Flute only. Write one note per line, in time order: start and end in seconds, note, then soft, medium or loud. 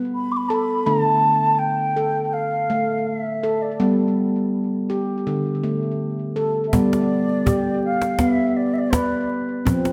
0.15 0.33 B5 medium
0.32 0.38 D6 medium
0.37 0.50 B5 medium
0.49 0.55 A5 medium
0.54 0.88 B5 medium
0.87 1.60 A5 medium
1.59 2.35 G5 medium
2.33 3.07 F5 medium
3.07 3.18 F5 medium
3.18 3.63 E5 medium
3.62 3.99 D5 medium
6.68 6.76 E5 medium
6.75 7.84 D5 medium
7.85 8.22 F5 medium
8.21 8.58 E5 medium
8.57 8.75 D5 medium
8.74 8.79 E5 medium
8.78 8.92 D5 medium
8.91 8.96 C5 medium
8.95 9.30 D5 medium